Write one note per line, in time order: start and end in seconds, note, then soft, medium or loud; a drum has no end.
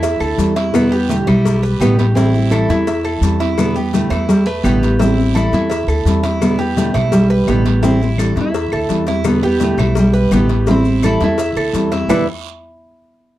0.00 0.18 E2 medium
0.00 0.52 E4 loud
0.00 0.20 E5 medium
0.00 muted nylon-string guitar stroke medium
0.00 cowbell loud
0.00 long guiro medium
0.00 maracas medium
0.20 0.37 D2 medium
0.20 0.55 A4 medium
0.20 claves medium
0.20 maracas soft
0.37 1.21 E2 medium
0.37 0.55 E3 medium
0.37 0.55 G3 medium
0.37 0.55 C4 medium
0.37 0.54 E4 medium
0.37 cowbell medium
0.37 short guiro medium
0.37 maracas medium
0.55 0.72 G3 soft
0.55 0.73 C4 soft
0.55 0.72 E4 medium
0.55 0.91 E4 medium
0.55 cowbell medium
0.55 short guiro medium
0.55 maracas soft
0.72 0.90 B2 medium
0.72 0.90 D3 medium
0.72 0.91 G3 medium
0.72 0.91 B3 medium
0.72 0.90 E4 medium
0.72 cowbell loud
0.72 long guiro medium
0.72 claves medium
0.72 maracas medium
0.91 1.09 G3 soft
0.91 1.09 B3 soft
0.91 1.08 E4 soft
0.91 1.26 G4 medium
0.91 maracas soft
1.09 1.26 B2 medium
1.09 1.26 D3 medium
1.09 1.27 G3 medium
1.09 1.15 A3 loud
1.09 1.27 B3 medium
1.09 1.26 E4 medium
1.09 cowbell medium
1.09 short guiro medium
1.09 maracas medium
1.27 1.77 B1 medium
1.27 1.44 G3 soft
1.27 1.45 B3 soft
1.27 1.44 E4 medium
1.27 1.62 E4 medium
1.27 cowbell medium
1.27 short guiro medium
1.27 claves medium
1.27 maracas soft
1.45 muted nylon-string guitar stroke medium
1.45 cowbell loud
1.45 long guiro medium
1.45 maracas medium
1.63 1.80 B4 medium
1.63 maracas soft
1.80 2.64 A1 medium
1.80 1.98 B2 medium
1.80 1.98 D3 medium
1.80 1.98 G3 medium
1.80 1.98 B3 medium
1.80 1.97 E4 medium
1.80 2.15 G4 medium
1.80 cowbell medium
1.80 short guiro medium
1.80 claves medium
1.80 maracas medium
1.99 2.15 G3 soft
1.99 2.16 B3 soft
1.99 2.15 E4 soft
1.99 cowbell medium
1.99 short guiro medium
1.99 maracas soft
2.15 2.33 E3 medium
2.15 2.33 G3 medium
2.15 2.33 C4 medium
2.15 2.51 E4 medium
2.15 2.33 E4 medium
2.15 cowbell loud
2.15 long guiro medium
2.15 maracas medium
2.34 2.52 G3 soft
2.34 2.52 C4 soft
2.34 2.51 E4 soft
2.34 maracas soft
2.51 2.69 E3 medium
2.51 2.69 G3 medium
2.51 2.68 C4 medium
2.51 2.68 E4 medium
2.51 2.86 A4 medium
2.51 cowbell medium
2.51 short guiro medium
2.51 claves medium
2.51 maracas medium
2.69 3.18 E2 medium
2.69 2.86 G3 soft
2.69 2.86 C4 soft
2.69 2.86 E4 medium
2.69 cowbell medium
2.69 short guiro medium
2.69 maracas soft
2.87 3.04 E5 medium
2.87 muted nylon-string guitar stroke medium
2.87 cowbell loud
2.87 long guiro medium
2.87 maracas medium
3.04 3.39 A4 medium
3.04 claves medium
3.04 maracas soft
3.21 4.05 E2 loud
3.21 3.39 E3 medium
3.21 3.40 G3 medium
3.21 3.40 C4 medium
3.21 3.38 E4 medium
3.21 cowbell medium
3.21 short guiro medium
3.21 maracas medium
3.40 3.57 G3 soft
3.40 3.58 C4 soft
3.40 3.57 E4 soft
3.40 3.75 E4 medium
3.40 cowbell medium
3.40 short guiro medium
3.40 maracas soft
3.57 3.75 B2 medium
3.57 3.75 D3 medium
3.57 3.75 G3 medium
3.57 3.75 B3 medium
3.57 3.74 E4 medium
3.57 cowbell loud
3.57 long guiro medium
3.57 claves medium
3.57 maracas medium
3.76 3.93 G3 soft
3.76 3.93 B3 soft
3.76 3.93 E4 soft
3.76 4.10 G4 medium
3.76 maracas soft
3.93 4.10 B2 medium
3.93 4.10 D3 medium
3.93 4.11 G3 medium
3.93 4.27 A3 medium
3.93 4.11 B3 medium
3.93 4.10 E4 medium
3.93 cowbell medium
3.93 short guiro medium
3.93 maracas medium
4.10 4.60 E2 medium
4.10 4.28 G3 soft
4.10 4.28 B3 medium
4.10 4.45 E4 medium
4.10 4.28 E4 medium
4.10 cowbell medium
4.10 short guiro medium
4.10 claves medium
4.10 maracas soft
4.29 4.46 G3 medium
4.29 muted nylon-string guitar stroke medium
4.29 cowbell loud
4.29 long guiro medium
4.29 maracas medium
4.46 4.64 A3 medium
4.46 4.64 B4 medium
4.46 maracas soft
4.64 5.47 A1 medium
4.64 4.81 B2 medium
4.64 4.82 D3 medium
4.64 4.82 G3 medium
4.64 4.82 B3 medium
4.64 4.81 E4 medium
4.64 4.99 G4 medium
4.64 cowbell medium
4.64 short guiro medium
4.64 claves medium
4.64 maracas medium
4.82 4.98 G3 soft
4.82 5.00 B3 soft
4.82 4.99 E4 medium
4.82 cowbell medium
4.82 short guiro medium
4.82 maracas soft
4.99 5.16 E3 medium
4.99 5.17 G3 medium
4.99 5.17 C4 medium
4.99 5.34 E4 medium
4.99 5.16 E4 medium
4.99 cowbell loud
4.99 long guiro medium
4.99 maracas medium
5.17 5.33 G3 soft
5.17 5.34 C4 soft
5.17 5.34 E4 soft
5.17 maracas soft
5.34 5.52 E3 medium
5.34 5.52 G3 medium
5.34 5.52 C4 medium
5.34 5.52 E4 medium
5.34 5.69 A4 medium
5.34 cowbell medium
5.34 short guiro medium
5.34 claves medium
5.34 maracas medium
5.52 5.85 E2 loud
5.52 5.70 G3 soft
5.52 5.70 C4 soft
5.52 5.70 E4 medium
5.52 cowbell medium
5.52 short guiro medium
5.52 maracas soft
5.70 5.87 E5 medium
5.70 muted nylon-string guitar stroke medium
5.70 cowbell loud
5.70 long guiro medium
5.70 maracas medium
5.87 6.04 D2 medium
5.87 6.23 A4 medium
5.87 claves medium
5.87 maracas soft
6.05 6.88 E2 medium
6.05 6.23 E3 medium
6.05 6.23 G3 medium
6.05 6.23 C4 medium
6.05 6.22 E4 medium
6.05 cowbell medium
6.05 short guiro medium
6.05 maracas medium
6.23 6.40 G3 soft
6.23 6.41 C4 soft
6.23 6.41 E4 medium
6.23 6.58 E4 loud
6.23 cowbell medium
6.23 short guiro medium
6.23 maracas soft
6.41 6.58 B2 medium
6.41 6.58 D3 medium
6.41 6.58 G3 medium
6.41 6.58 B3 medium
6.41 6.57 E4 medium
6.41 cowbell loud
6.41 long guiro medium
6.41 claves medium
6.41 maracas medium
6.58 6.75 G3 soft
6.58 6.75 B3 soft
6.58 6.76 E4 medium
6.58 6.93 G4 medium
6.58 maracas soft
6.75 6.93 B2 medium
6.75 6.94 D3 medium
6.75 6.94 G3 medium
6.75 7.10 A3 medium
6.75 6.92 B3 medium
6.75 6.92 E4 medium
6.75 cowbell medium
6.75 short guiro medium
6.75 maracas medium
6.93 7.44 B1 loud
6.93 7.10 G3 soft
6.93 7.11 B3 soft
6.93 7.11 E4 soft
6.93 7.29 E4 medium
6.93 cowbell medium
6.93 short guiro medium
6.93 claves medium
6.93 maracas soft
7.11 7.49 G3 loud
7.11 muted nylon-string guitar stroke medium
7.11 cowbell loud
7.11 long guiro medium
7.11 maracas medium
7.30 7.47 B4 medium
7.30 maracas soft
7.47 8.31 A1 medium
7.47 7.64 B2 medium
7.47 7.64 D3 medium
7.47 7.65 G3 medium
7.47 7.64 B3 medium
7.47 7.63 E4 medium
7.47 7.82 G4 medium
7.47 cowbell medium
7.47 short guiro medium
7.47 claves medium
7.47 maracas medium
7.65 7.81 G3 soft
7.65 7.82 B3 soft
7.65 cowbell medium
7.65 short guiro medium
7.65 maracas soft
7.81 7.99 E3 medium
7.81 8.00 G3 medium
7.81 8.00 C4 medium
7.81 7.98 E4 medium
7.81 8.17 E4 medium
7.81 cowbell loud
7.81 long guiro medium
7.81 maracas medium
7.99 8.16 G3 soft
7.99 8.17 C4 soft
7.99 8.17 E4 soft
7.99 maracas soft
8.17 8.35 E3 medium
8.17 8.35 G3 medium
8.17 8.35 C4 medium
8.17 8.34 E4 medium
8.17 8.53 A4 medium
8.17 cowbell medium
8.17 short guiro medium
8.17 claves medium
8.17 maracas medium
8.21 8.38 D4 medium
8.35 8.69 E2 medium
8.35 8.52 G3 soft
8.35 8.53 C4 soft
8.35 8.53 E4 medium
8.35 cowbell medium
8.35 short guiro medium
8.35 maracas soft
8.40 9.06 E4 medium
8.53 8.72 E5 medium
8.53 muted nylon-string guitar stroke medium
8.53 cowbell loud
8.53 long guiro medium
8.53 maracas medium
8.72 8.88 D2 medium
8.72 9.07 A4 medium
8.72 claves medium
8.72 maracas soft
8.89 9.73 E2 medium
8.89 9.06 E3 medium
8.89 9.07 G3 medium
8.89 9.06 C4 medium
8.89 9.05 E4 medium
8.89 cowbell medium
8.89 short guiro medium
8.89 maracas medium
9.06 9.23 G3 soft
9.06 9.25 C4 soft
9.06 9.24 E4 medium
9.06 9.25 E4 medium
9.06 cowbell medium
9.06 short guiro medium
9.06 maracas soft
9.24 9.42 B2 medium
9.24 9.42 D3 medium
9.24 9.42 G3 medium
9.24 9.42 B3 medium
9.24 9.40 E4 medium
9.24 cowbell loud
9.24 long guiro medium
9.24 claves medium
9.24 maracas medium
9.42 9.59 G3 soft
9.42 9.62 B3 medium
9.42 9.59 E4 soft
9.42 9.78 G4 medium
9.42 maracas soft
9.60 9.77 B2 medium
9.60 9.77 D3 medium
9.60 9.78 G3 medium
9.60 9.77 B3 medium
9.60 9.76 E4 medium
9.60 cowbell medium
9.60 short guiro medium
9.60 maracas medium
9.64 9.98 A3 medium
9.77 10.28 B1 loud
9.77 9.95 G3 soft
9.77 9.95 B3 medium
9.77 9.95 E4 medium
9.77 10.13 E4 medium
9.77 cowbell medium
9.77 short guiro medium
9.77 claves medium
9.77 maracas soft
9.95 10.34 G3 medium
9.95 muted nylon-string guitar stroke medium
9.95 cowbell loud
9.95 long guiro medium
9.95 maracas medium
10.14 10.31 B4 medium
10.14 maracas soft
10.31 11.15 A1 medium
10.31 10.48 B2 medium
10.31 10.48 D3 medium
10.31 10.49 G3 medium
10.31 10.49 B3 medium
10.31 10.48 E4 loud
10.31 10.67 G4 medium
10.31 cowbell medium
10.31 short guiro medium
10.31 claves medium
10.31 maracas medium
10.49 10.67 G3 soft
10.49 10.67 B3 medium
10.49 10.66 E4 soft
10.49 cowbell medium
10.49 short guiro medium
10.49 maracas soft
10.67 10.85 E3 medium
10.67 10.85 G3 medium
10.67 10.85 C4 medium
10.67 11.02 E4 medium
10.67 10.84 E4 medium
10.67 cowbell loud
10.67 long guiro medium
10.67 maracas medium
10.85 11.02 G3 soft
10.85 11.02 C4 soft
10.85 11.02 E4 medium
10.85 maracas soft
11.02 11.20 E3 medium
11.02 11.20 G3 medium
11.02 11.20 C4 medium
11.02 11.19 E4 medium
11.02 11.38 A4 medium
11.02 cowbell medium
11.02 short guiro medium
11.02 claves medium
11.02 maracas medium
11.20 11.54 E2 loud
11.20 11.38 G3 soft
11.20 11.38 C4 soft
11.20 11.38 E4 medium
11.20 cowbell medium
11.20 short guiro medium
11.20 maracas soft
11.38 11.56 E5 medium
11.38 muted nylon-string guitar stroke medium
11.38 cowbell loud
11.38 long guiro medium
11.38 maracas medium
11.56 11.72 D2 medium
11.56 11.91 A4 medium
11.56 claves medium
11.56 maracas soft
11.73 12.05 E2 medium
11.73 11.91 E3 medium
11.73 11.91 G3 medium
11.73 11.91 C4 medium
11.73 11.90 E4 medium
11.73 cowbell medium
11.73 short guiro medium
11.73 maracas medium
11.91 12.09 G3 soft
11.91 12.09 C4 soft
11.91 12.09 E4 medium
11.91 12.08 E4 medium
11.91 cowbell medium
11.91 short guiro medium
11.91 maracas soft
12.08 12.25 E2 medium
12.08 12.24 E2 medium
12.08 12.24 B2 medium
12.08 12.24 D3 medium
12.08 12.24 G3 medium
12.08 12.24 B3 medium
12.08 12.26 E4 medium
12.08 12.24 E4 medium
12.08 12.26 B4 medium
12.08 12.26 D5 medium
12.08 low bongo loud
12.08 long guiro loud
12.08 claves loud
12.08 maracas loud